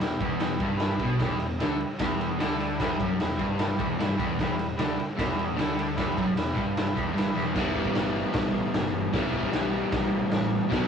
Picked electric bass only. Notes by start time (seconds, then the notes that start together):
0.00 E1
0.21 E1
0.60 G1
1.00 B1
1.20 E1
1.42 E1
1.62 D2
1.84 muted picked electric bass stroke
2.01 E1
2.42 D2
2.80 E1
3.00 F#1
3.22 E1
3.39 G1
3.80 E1
4.01 G1
4.19 E1
4.39 E1
4.59 E1
4.78 D2
4.98 muted picked electric bass stroke
5.20 E1
5.58 D2
5.98 E1
6.17 F#1
6.37 E1
6.57 G1
6.97 E1
7.16 G1
7.37 E1
7.56 E1
7.96 G1
8.35 B1
8.73 G1
8.93 G1
9.13 E1
9.55 B1
9.92 B1
10.33 A1
10.73 B1